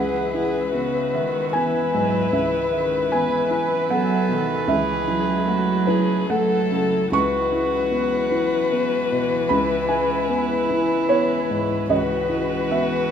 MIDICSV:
0, 0, Header, 1, 6, 480
1, 0, Start_track
1, 0, Tempo, 790514
1, 1415, Time_signature, 3, 2, 24, 8
1, 3323, Tempo, 831025
1, 4283, Tempo, 791557
1, 6203, Tempo, 806452
1, 7877, End_track
2, 0, Start_track
2, 0, Title_t, "Violin"
2, 0, Program_c, 0, 40
2, 0, Note_on_c, 0, 71, 63
2, 910, Note_off_c, 0, 71, 0
2, 932, Note_on_c, 0, 71, 67
2, 2348, Note_off_c, 0, 71, 0
2, 2377, Note_on_c, 0, 69, 69
2, 2855, Note_on_c, 0, 68, 69
2, 2864, Note_off_c, 0, 69, 0
2, 3327, Note_on_c, 0, 66, 66
2, 3336, Note_off_c, 0, 68, 0
2, 3563, Note_on_c, 0, 68, 69
2, 3572, Note_off_c, 0, 66, 0
2, 3801, Note_on_c, 0, 69, 79
2, 3809, Note_off_c, 0, 68, 0
2, 4282, Note_off_c, 0, 69, 0
2, 4286, Note_on_c, 0, 71, 72
2, 7136, Note_off_c, 0, 71, 0
2, 7161, Note_on_c, 0, 71, 73
2, 7877, Note_off_c, 0, 71, 0
2, 7877, End_track
3, 0, Start_track
3, 0, Title_t, "Viola"
3, 0, Program_c, 1, 41
3, 0, Note_on_c, 1, 68, 57
3, 201, Note_off_c, 1, 68, 0
3, 206, Note_on_c, 1, 68, 72
3, 443, Note_off_c, 1, 68, 0
3, 447, Note_on_c, 1, 66, 54
3, 927, Note_on_c, 1, 64, 62
3, 936, Note_off_c, 1, 66, 0
3, 1894, Note_on_c, 1, 71, 68
3, 1903, Note_off_c, 1, 64, 0
3, 2127, Note_off_c, 1, 71, 0
3, 2131, Note_on_c, 1, 71, 67
3, 3776, Note_off_c, 1, 71, 0
3, 3801, Note_on_c, 1, 69, 70
3, 4273, Note_off_c, 1, 69, 0
3, 4278, Note_on_c, 1, 66, 75
3, 5714, Note_on_c, 1, 64, 78
3, 5723, Note_off_c, 1, 66, 0
3, 7152, Note_on_c, 1, 66, 69
3, 7161, Note_off_c, 1, 64, 0
3, 7877, Note_off_c, 1, 66, 0
3, 7877, End_track
4, 0, Start_track
4, 0, Title_t, "Felt piano"
4, 0, Program_c, 2, 0
4, 0, Note_on_c, 2, 37, 61
4, 0, Note_on_c, 2, 78, 92
4, 69, Control_c, 2, 64, 127
4, 207, Note_on_c, 2, 64, 53
4, 449, Note_on_c, 2, 59, 48
4, 597, Note_off_c, 2, 64, 0
4, 697, Note_on_c, 2, 76, 48
4, 835, Note_off_c, 2, 59, 0
4, 906, Note_off_c, 2, 78, 0
4, 929, Note_on_c, 2, 80, 87
4, 935, Note_on_c, 2, 59, 58
4, 1079, Note_off_c, 2, 76, 0
4, 1155, Note_off_c, 2, 80, 0
4, 1179, Note_on_c, 2, 44, 53
4, 1320, Note_off_c, 2, 59, 0
4, 1395, Note_off_c, 2, 37, 0
4, 1412, Note_on_c, 2, 37, 60
4, 1414, Note_on_c, 2, 76, 81
4, 1418, Note_off_c, 2, 44, 0
4, 1426, Control_c, 2, 64, 0
4, 1520, Control_c, 2, 64, 127
4, 1644, Note_off_c, 2, 76, 0
4, 1653, Note_on_c, 2, 76, 50
4, 1894, Note_on_c, 2, 80, 84
4, 1901, Note_on_c, 2, 59, 54
4, 2037, Note_off_c, 2, 76, 0
4, 2128, Note_on_c, 2, 64, 47
4, 2280, Note_off_c, 2, 59, 0
4, 2348, Note_off_c, 2, 80, 0
4, 2367, Note_on_c, 2, 59, 64
4, 2371, Note_on_c, 2, 78, 84
4, 2513, Note_off_c, 2, 64, 0
4, 2603, Note_on_c, 2, 47, 50
4, 2751, Note_off_c, 2, 59, 0
4, 2822, Note_off_c, 2, 37, 0
4, 2823, Note_off_c, 2, 78, 0
4, 2839, Note_on_c, 2, 37, 72
4, 2843, Note_on_c, 2, 76, 92
4, 2844, Note_off_c, 2, 47, 0
4, 2859, Control_c, 2, 64, 0
4, 2940, Control_c, 2, 64, 127
4, 3081, Note_on_c, 2, 64, 58
4, 3322, Note_on_c, 2, 57, 54
4, 3462, Note_off_c, 2, 64, 0
4, 3533, Note_off_c, 2, 76, 0
4, 3553, Note_on_c, 2, 71, 87
4, 3558, Note_on_c, 2, 64, 61
4, 3705, Note_off_c, 2, 57, 0
4, 3780, Note_off_c, 2, 71, 0
4, 3800, Note_on_c, 2, 78, 86
4, 3801, Note_on_c, 2, 57, 68
4, 3944, Note_off_c, 2, 64, 0
4, 4038, Note_on_c, 2, 49, 60
4, 4188, Note_off_c, 2, 57, 0
4, 4255, Note_off_c, 2, 37, 0
4, 4259, Note_off_c, 2, 78, 0
4, 4272, Note_on_c, 2, 37, 71
4, 4280, Note_off_c, 2, 49, 0
4, 4282, Note_on_c, 2, 85, 117
4, 4294, Control_c, 2, 64, 0
4, 4410, Control_c, 2, 64, 127
4, 4516, Note_on_c, 2, 64, 62
4, 4753, Note_on_c, 2, 59, 59
4, 4905, Note_off_c, 2, 64, 0
4, 4999, Note_on_c, 2, 64, 62
4, 5145, Note_off_c, 2, 59, 0
4, 5243, Note_on_c, 2, 59, 67
4, 5387, Note_off_c, 2, 64, 0
4, 5484, Note_on_c, 2, 47, 63
4, 5624, Note_off_c, 2, 59, 0
4, 5692, Note_off_c, 2, 37, 0
4, 5697, Note_off_c, 2, 85, 0
4, 5712, Note_on_c, 2, 83, 97
4, 5719, Note_on_c, 2, 37, 79
4, 5721, Note_off_c, 2, 47, 0
4, 5732, Control_c, 2, 64, 0
4, 5828, Control_c, 2, 64, 127
4, 5939, Note_off_c, 2, 83, 0
4, 5952, Note_on_c, 2, 64, 59
4, 5952, Note_on_c, 2, 80, 81
4, 6196, Note_on_c, 2, 59, 62
4, 6341, Note_off_c, 2, 64, 0
4, 6412, Note_off_c, 2, 80, 0
4, 6444, Note_on_c, 2, 64, 63
4, 6580, Note_off_c, 2, 59, 0
4, 6673, Note_on_c, 2, 59, 67
4, 6673, Note_on_c, 2, 73, 103
4, 6825, Note_off_c, 2, 64, 0
4, 6917, Note_on_c, 2, 44, 55
4, 7060, Note_off_c, 2, 59, 0
4, 7131, Note_off_c, 2, 73, 0
4, 7133, Note_off_c, 2, 37, 0
4, 7152, Note_on_c, 2, 37, 72
4, 7154, Note_on_c, 2, 75, 81
4, 7157, Note_off_c, 2, 44, 0
4, 7170, Control_c, 2, 64, 0
4, 7276, Control_c, 2, 64, 127
4, 7388, Note_on_c, 2, 64, 58
4, 7611, Note_off_c, 2, 75, 0
4, 7635, Note_on_c, 2, 59, 53
4, 7639, Note_on_c, 2, 76, 81
4, 7781, Note_off_c, 2, 64, 0
4, 7877, Note_off_c, 2, 37, 0
4, 7877, Note_off_c, 2, 59, 0
4, 7877, Note_off_c, 2, 76, 0
4, 7877, End_track
5, 0, Start_track
5, 0, Title_t, "String section"
5, 0, Program_c, 3, 48
5, 0, Note_on_c, 3, 56, 55
5, 0, Note_on_c, 3, 71, 54
5, 0, Note_on_c, 3, 76, 58
5, 1390, Note_off_c, 3, 71, 0
5, 1419, Note_off_c, 3, 56, 0
5, 1419, Note_on_c, 3, 71, 58
5, 1424, Note_on_c, 3, 54, 59
5, 2825, Note_off_c, 3, 71, 0
5, 2853, Note_off_c, 3, 76, 0
5, 2856, Note_on_c, 3, 64, 61
5, 2857, Note_on_c, 3, 57, 67
5, 4279, Note_off_c, 3, 54, 0
5, 4286, Note_on_c, 3, 54, 75
5, 4286, Note_on_c, 3, 71, 68
5, 4287, Note_off_c, 3, 57, 0
5, 5699, Note_off_c, 3, 54, 0
5, 5701, Note_off_c, 3, 64, 0
5, 5713, Note_on_c, 3, 64, 70
5, 5714, Note_on_c, 3, 52, 69
5, 7130, Note_off_c, 3, 64, 0
5, 7148, Note_off_c, 3, 71, 0
5, 7155, Note_on_c, 3, 66, 66
5, 7156, Note_on_c, 3, 71, 73
5, 7877, Note_off_c, 3, 52, 0
5, 7877, Note_off_c, 3, 66, 0
5, 7877, Note_off_c, 3, 71, 0
5, 7877, End_track
6, 0, Start_track
6, 0, Title_t, "Cello"
6, 0, Program_c, 4, 42
6, 0, Note_on_c, 4, 52, 60
6, 448, Note_off_c, 4, 52, 0
6, 451, Note_on_c, 4, 49, 63
6, 689, Note_on_c, 4, 51, 59
6, 698, Note_off_c, 4, 49, 0
6, 940, Note_on_c, 4, 52, 63
6, 949, Note_off_c, 4, 51, 0
6, 1174, Note_on_c, 4, 54, 64
6, 1183, Note_off_c, 4, 52, 0
6, 1410, Note_off_c, 4, 54, 0
6, 1413, Note_on_c, 4, 52, 62
6, 1644, Note_off_c, 4, 52, 0
6, 1647, Note_on_c, 4, 51, 66
6, 1886, Note_on_c, 4, 52, 60
6, 1895, Note_off_c, 4, 51, 0
6, 2368, Note_on_c, 4, 54, 71
6, 2377, Note_off_c, 4, 52, 0
6, 2616, Note_on_c, 4, 51, 64
6, 2625, Note_off_c, 4, 54, 0
6, 2853, Note_on_c, 4, 52, 70
6, 2862, Note_off_c, 4, 51, 0
6, 3093, Note_on_c, 4, 54, 75
6, 3103, Note_off_c, 4, 52, 0
6, 3799, Note_off_c, 4, 54, 0
6, 3802, Note_on_c, 4, 54, 67
6, 4274, Note_off_c, 4, 54, 0
6, 4286, Note_on_c, 4, 52, 78
6, 7137, Note_off_c, 4, 52, 0
6, 7165, Note_on_c, 4, 52, 71
6, 7877, Note_off_c, 4, 52, 0
6, 7877, End_track
0, 0, End_of_file